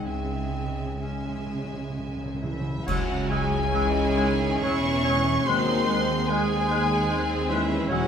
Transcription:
0.00 2.82 C#3 soft
0.00 3.29 G#3 soft
0.00 3.50 E4 soft
0.00 3.71 G#4 soft
0.06 2.61 C#2 soft
0.06 0.14 C#3 soft
0.06 2.61 C#3 soft
0.06 0.99 G#3 soft
0.06 1.03 C4 medium
0.06 0.99 E5 soft
0.06 0.99 G#5 soft
0.15 0.23 C#3 soft
0.24 0.32 C#3 soft
0.60 0.68 C#3 soft
0.69 0.77 C#3 soft
0.78 0.85 C#3 soft
0.86 0.93 C#3 soft
0.94 1.02 C#3 soft
1.00 1.11 C#3 soft
1.00 2.61 G#3 soft
1.00 1.93 C#4 soft
1.00 2.62 E5 soft
1.00 2.38 G#5 soft
1.21 1.28 C#3 soft
1.29 1.37 C#3 soft
1.38 1.46 C#3 soft
1.47 1.54 C#3 soft
1.55 1.63 C#3 soft
1.64 1.71 C#3 soft
1.73 1.80 C#3 soft
1.81 1.89 C#3 soft
1.90 1.98 C#3 soft
1.99 2.07 C#3 medium
2.08 2.15 C#3 medium
2.17 2.24 C#3 medium
2.26 2.33 C#3 medium
2.34 2.42 C#3 medium
2.41 2.51 C#3 medium
2.41 2.84 E3 medium
2.41 2.84 E4 medium
2.41 2.84 E5 medium
2.52 2.60 C#3 medium
2.61 2.69 C#3 medium
2.70 2.77 C#3 medium
2.78 2.86 C#3 medium
2.87 4.59 C#2 medium
2.87 5.50 C#3 medium
2.87 3.68 F#3 medium
2.87 3.30 F#3 medium
2.87 3.04 G#3 medium
2.87 5.43 C#4 medium
2.87 3.68 C#4 medium
2.87 3.68 E4 medium
2.87 3.30 F#4 medium
2.87 3.03 C#5 medium
2.87 3.30 F#5 medium
2.87 2.97 E6 medium
2.87 concert bass drum medium
2.87 crash medium
3.09 4.63 C#4 soft
3.30 4.39 G#3 medium
3.30 3.46 G#3 medium
3.30 4.60 G#3 medium
3.30 4.63 G#4 medium
3.30 3.46 C#5 medium
3.30 4.60 G#5 medium
3.30 3.41 E6 medium
3.51 3.93 E4 medium
3.71 4.17 E3 medium
3.71 3.88 G#3 medium
3.71 4.61 E4 medium
3.71 6.29 G#4 medium
3.71 4.16 G#4 medium
3.71 3.87 C#5 medium
3.71 3.83 E6 medium
3.95 5.51 E4 medium
4.16 4.63 D#3 medium
4.16 4.33 G#3 medium
4.16 6.28 G#4 medium
4.16 4.32 C#5 medium
4.16 4.27 E6 medium
4.41 4.84 G#3 medium
4.62 5.47 E1 medium
4.62 5.47 E2 medium
4.62 5.47 E3 medium
4.62 4.79 G#3 medium
4.62 5.47 C#4 medium
4.62 5.06 C#4 soft
4.62 5.05 E4 medium
4.62 5.47 C#5 medium
4.62 4.79 C#5 medium
4.62 5.45 C#6 loud
4.62 4.73 E6 medium
4.85 5.26 G#3 soft
5.04 5.22 G#3 soft
5.04 5.47 C#4 medium
5.04 5.51 C#4 medium
5.04 5.20 C#5 medium
5.04 5.16 E6 medium
5.28 8.08 G#3 medium
5.46 7.86 D#2 medium
5.46 7.94 D#3 medium
5.46 5.87 F#3 medium
5.46 5.86 G#3 medium
5.46 5.64 G#3 medium
5.46 6.29 C4 medium
5.46 6.29 D#4 medium
5.46 5.62 C5 medium
5.46 6.29 C5 medium
5.46 6.29 C6 loud
5.46 5.57 F#6 medium
5.67 7.09 D#4 medium
5.87 7.09 G#3 medium
5.87 6.04 G#3 medium
5.87 6.89 C4 medium
5.87 6.03 C5 medium
5.87 5.97 F#6 medium
6.08 7.93 F#4 medium
6.27 6.45 G#3 medium
6.27 7.51 G#3 loud
6.27 6.70 C4 medium
6.27 6.68 G#4 medium
6.27 7.51 G#4 medium
6.27 7.88 G#4 medium
6.27 6.43 C5 medium
6.27 7.50 G#5 loud
6.27 6.39 F#6 medium
6.49 7.93 C5 medium
6.68 6.86 G#3 medium
6.68 7.88 C4 medium
6.68 8.08 G#4 medium
6.68 6.84 C5 medium
6.68 6.79 F#6 medium
6.90 7.30 C4 medium
7.09 7.26 G#3 medium
7.09 8.08 G#3 medium
7.09 7.50 C4 medium
7.09 7.50 D#4 soft
7.09 7.25 C5 medium
7.09 7.18 F#6 medium
7.31 7.70 C4 medium
7.49 7.90 E3 medium
7.49 7.67 G#3 medium
7.49 8.08 C#4 medium
7.49 7.93 D#4 medium
7.49 7.89 E4 medium
7.49 7.65 C5 medium
7.49 7.90 E5 medium
7.49 7.60 F#6 medium
7.71 7.94 C4 medium
7.88 8.08 E1 medium
7.88 8.08 E2 medium
7.88 8.08 E3 medium
7.88 8.08 F#3 medium
7.88 8.07 C#4 medium
7.88 8.08 C#4 medium
7.88 8.08 E4 medium
7.88 8.08 F#4 medium
7.88 8.04 C#5 medium
7.88 8.08 F#5 medium
7.88 7.99 E6 medium

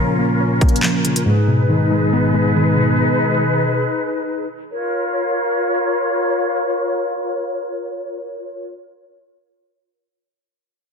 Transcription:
0.00 0.62 A#2 medium
0.00 1.05 C#3 medium
0.00 0.83 F3 medium
0.00 0.18 A#3 medium
0.00 0.40 C#4 medium
0.00 1.23 C#4 medium
0.00 1.23 F4 medium
0.00 1.23 A#4 medium
0.18 0.60 A#3 medium
0.40 1.26 C#4 medium
0.61 1.26 A#3 medium
0.61 kick medium
0.61 closed hi-hat soft
0.69 closed hi-hat medium
0.76 closed hi-hat medium
0.83 1.26 F3 medium
0.83 clap loud
1.05 1.26 C#3 medium
1.05 closed hi-hat medium
1.16 closed hi-hat medium
1.26 2.34 G#2 medium
1.26 4.47 D#4 medium
1.26 4.48 G#4 medium
1.26 4.45 B4 medium
1.48 2.56 B2 medium
1.70 2.55 D#3 medium
1.91 2.33 G#3 medium
2.13 3.21 B3 loud
2.34 3.42 G#3 medium
2.56 3.64 D#3 medium
2.77 3.85 B2 medium
4.72 8.71 F4 medium
4.72 8.71 A#4 medium
4.72 8.71 C#5 medium

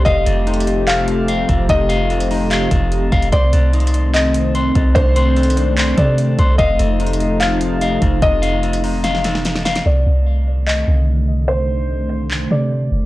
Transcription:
0.00 3.28 G4 medium
0.05 0.26 F1 loud
0.05 6.55 C3 medium
0.05 3.29 F3 medium
0.05 3.29 A3 medium
0.05 0.83 D#5 loud
0.05 1.27 F5 loud
0.05 kick loud
0.05 closed hi-hat medium
0.26 1.45 F1 loud
0.26 0.86 A4 medium
0.26 closed hi-hat medium
0.47 1.68 D#4 medium
0.47 closed hi-hat soft
0.54 closed hi-hat medium
0.60 closed hi-hat medium
0.67 closed hi-hat medium
0.87 1.47 A4 medium
0.87 1.26 F5 medium
0.87 clap loud
0.87 closed hi-hat medium
1.08 closed hi-hat medium
1.28 1.88 F5 loud
1.28 closed hi-hat medium
1.49 1.69 F1 loud
1.49 2.09 A4 medium
1.49 kick loud
1.49 closed hi-hat medium
1.69 2.67 F1 loud
1.69 2.30 D#4 medium
1.69 3.29 D#5 loud
1.69 kick loud
1.69 closed hi-hat medium
1.89 2.49 F5 loud
1.89 closed hi-hat medium
2.10 2.70 A4 medium
2.10 closed hi-hat soft
2.20 closed hi-hat medium
2.31 3.33 D#4 medium
2.31 open hi-hat soft
2.51 3.11 F5 loud
2.51 clap loud
2.51 closed hi-hat medium
2.71 3.10 F1 loud
2.71 3.33 A4 medium
2.71 kick loud
2.71 closed hi-hat medium
2.92 closed hi-hat medium
3.12 3.32 F1 loud
3.12 3.32 F5 loud
3.12 kick loud
3.12 closed hi-hat soft
3.22 closed hi-hat medium
3.32 3.52 C2 loud
3.32 6.56 D#3 medium
3.32 9.82 A3 medium
3.32 6.56 C4 medium
3.32 4.54 C5 loud
3.32 4.10 D5 loud
3.32 kick loud
3.32 closed hi-hat medium
3.53 4.71 C2 loud
3.53 4.13 A4 medium
3.53 closed hi-hat medium
3.73 4.96 D#4 medium
3.73 closed hi-hat soft
3.80 closed hi-hat medium
3.87 closed hi-hat medium
3.94 closed hi-hat medium
4.14 4.74 A4 medium
4.14 4.52 D#5 medium
4.14 clap loud
4.14 closed hi-hat medium
4.34 closed hi-hat medium
4.55 5.15 C5 loud
4.55 closed hi-hat medium
4.75 4.95 C2 loud
4.75 5.35 A4 medium
4.75 kick loud
4.75 closed hi-hat medium
4.95 5.94 C2 loud
4.95 5.55 D4 medium
4.95 5.93 C5 loud
4.95 kick loud
4.95 closed hi-hat medium
5.16 5.76 C5 loud
5.16 closed hi-hat medium
5.37 5.96 A4 medium
5.37 closed hi-hat soft
5.43 closed hi-hat medium
5.50 closed hi-hat medium
5.57 6.59 D4 medium
5.57 closed hi-hat medium
5.77 6.38 C5 loud
5.77 clap loud
5.77 closed hi-hat medium
5.97 6.37 C3 loud
5.97 6.59 A4 medium
5.97 6.56 D5 medium
5.97 kick medium
5.97 closed hi-hat medium
6.18 closed hi-hat medium
6.39 6.58 C2 loud
6.39 6.59 C5 loud
6.39 kick loud
6.39 closed hi-hat medium
6.58 6.79 F1 loud
6.58 9.82 C3 medium
6.58 9.82 F3 medium
6.58 9.82 D#4 medium
6.58 7.36 D#5 loud
6.58 7.80 F5 loud
6.58 kick loud
6.58 closed hi-hat medium
6.79 7.98 F1 loud
6.79 7.39 A4 medium
6.79 closed hi-hat medium
7.00 8.21 D#4 medium
7.00 closed hi-hat soft
7.07 closed hi-hat medium
7.13 closed hi-hat medium
7.20 closed hi-hat medium
7.40 8.00 A4 medium
7.40 7.79 F5 medium
7.40 clap loud
7.40 closed hi-hat medium
7.61 closed hi-hat medium
7.81 8.41 F5 loud
7.81 closed hi-hat medium
8.02 8.22 F1 loud
8.02 8.62 A4 medium
8.02 kick loud
8.02 closed hi-hat medium
8.22 9.82 F1 loud
8.22 8.83 D#4 medium
8.22 9.82 D#5 loud
8.22 kick loud
8.22 closed hi-hat medium
8.42 9.03 F5 loud
8.42 closed hi-hat medium
8.63 9.23 A4 medium
8.63 closed hi-hat soft
8.73 closed hi-hat medium
8.84 9.86 D#4 medium
8.84 open hi-hat soft
9.04 9.64 F5 loud
9.04 snare medium
9.04 closed hi-hat medium
9.15 snare medium
9.24 9.86 A4 medium
9.24 snare medium
9.24 closed hi-hat medium
9.35 snare medium
9.45 snare loud
9.45 closed hi-hat medium
9.56 snare medium
9.65 9.86 F5 loud
9.65 snare loud
9.65 closed hi-hat soft
9.75 snare loud
9.75 closed hi-hat medium
9.86 10.05 C2 loud
9.86 13.06 C3 medium
9.86 13.06 D3 medium
9.86 13.06 D#3 medium
9.86 13.06 A3 medium
9.86 10.63 D5 medium
10.06 10.84 C2 loud
10.67 11.05 D#5 medium
10.67 clap loud
10.87 12.47 C2 loud
11.48 12.46 C5 loud
12.31 clap loud
12.51 12.90 C3 loud
12.51 13.06 D5 medium
12.92 13.06 F1 loud

